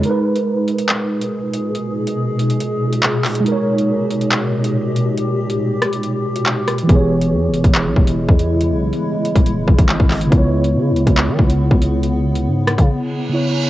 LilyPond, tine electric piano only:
\new Staff \with { instrumentName = "Tine electric piano" } { \time 4/4 \key gis \minor \tempo 4 = 140 <gis dis' ais' b'>1~ | <gis dis' ais' b'>1 | <gis dis' ais' cis''>1~ | <gis dis' ais' cis''>1 |
<e b gis' cis''>1~ | <e b gis' cis''>1 | <cis b e' cis''>1~ | <cis b e' cis''>2. <cis b e' cis''>4 | }